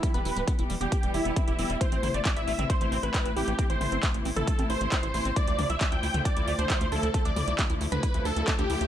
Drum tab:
HH |xxoxxxoxxxoxxxox|xxoxxxoxxxoxxxox|xxoxxxoxxxoxxxox|xxoxxxoxxxoxxxox|
CP |----------------|----x-------x---|----x-------x---|----x-------x---|
T2 |----------------|--o----o--------|--o----o--------|--o----o--------|
BD |o---o---o---o---|o---o---o---o---|o---o---o---o---|o---o---o---o---|

HH |xxoxxxoxxxoxxxox|
CP |----x-------x---|
T2 |--o----o--------|
BD |o---o---o---o---|